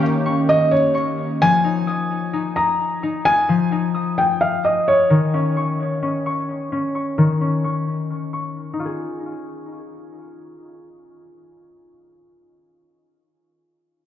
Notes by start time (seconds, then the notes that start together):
Already playing: D#3 A#3 C#4 G4 C#6
0.02 C#4
0.26 C#6
0.49 D#5
0.71 C#5
0.95 C#6
1.42 F3 G#5
1.64 D#4
1.87 D#6
2.33 D#4
2.56 A#5 D#6
3.03 D#4
3.25 G#5 D#6
3.49 F3
3.72 D#4
3.94 D#6
4.18 G5
4.41 F5
4.65 D#5 D#6
4.88 C#5
5.10 D#3
5.34 C#4
5.57 C#6
6.03 C#4
6.26 C#6
6.72 C#4
6.95 C#6
7.18 D#3
7.41 C#4
7.64 C#6
8.33 C#6
8.73 D#4
8.79 F4
8.85 G#4